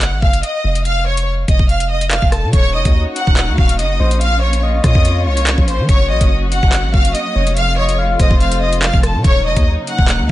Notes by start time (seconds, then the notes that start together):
Already playing: F#1 F#5 F#6
0.01 clap, closed hi-hat
0.12 A1
0.22 F#1 F5 F6, kick
0.33 closed hi-hat
0.43 D#5 D#6, closed hi-hat
0.64 F1
0.75 closed hi-hat
0.85 F5 F6, closed hi-hat
1.06 C#5 C#6
1.17 closed hi-hat
1.48 F1 D#5 D#6, kick, closed hi-hat
1.59 F1, kick
1.69 F5 F6, closed hi-hat
1.80 closed hi-hat
1.90 D#5 D#6
2.01 closed hi-hat
2.11 F5 F6, clap, closed hi-hat
2.22 F1, kick
2.32 A4 A5, cross-stick, closed hi-hat
2.43 C3
2.53 D#1 A#3 C#4 D#4 F#4 C#5 C#6, kick, closed hi-hat
2.74 F1 D#5 D#6
2.85 D#2, kick, closed hi-hat
3.16 F#5 F#6, closed hi-hat
3.27 D#1, kick
3.37 clap, closed hi-hat
3.48 D#2
3.58 D#1 F5 F6, kick
3.69 closed hi-hat
3.79 F#1 D#5 D#6, closed hi-hat
4.00 A#1 C5
4.11 closed hi-hat
4.21 F4 F5 F6, closed hi-hat
4.42 C#5 C#6
4.53 closed hi-hat
4.63 D#5
4.84 A#2 C#5 D#5 D#6, kick, cross-stick, closed hi-hat
4.95 F2, kick
5.05 closed hi-hat
5.26 C2 C#5 C#6
5.37 closed hi-hat
5.47 clap, closed hi-hat
5.58 A#1, kick
5.68 C5 C6, closed hi-hat
5.79 F3
5.89 F#1 F#3 F#4 C#5 C#6, kick, closed hi-hat
6.10 A#1 D#5 D#6
6.21 F#1, kick, closed hi-hat
6.52 F#5 F#6, closed hi-hat
6.63 F#1, kick
6.73 clap, closed hi-hat
6.84 A1
6.94 F#1 F5 F6, kick
7.05 closed hi-hat
7.14 D#5 D#6, closed hi-hat
7.36 F1 C#5
7.47 closed hi-hat
7.56 C3 F3 A3 F4 F5 F6, closed hi-hat
7.78 C#5 D#5 C#6
7.89 closed hi-hat
7.98 F5
8.19 F1 C5 D#5 D#6, kick, closed hi-hat
8.31 F1, kick
8.40 F5 F6, closed hi-hat
8.52 closed hi-hat
8.61 D#5 D#6
8.73 closed hi-hat
8.82 F5 F6, clap, closed hi-hat
8.93 F1, kick
9.03 A4 A5, cross-stick, closed hi-hat
9.15 C3
9.24 D#1 C#3 F#3 A#3 D#4 C#5 C#6, kick, closed hi-hat
9.45 F1 D#5 D#6
9.56 D#2, kick, closed hi-hat
9.87 F#5 F#6, closed hi-hat
9.98 D#1, kick
10.08 clap, closed hi-hat
10.19 D#2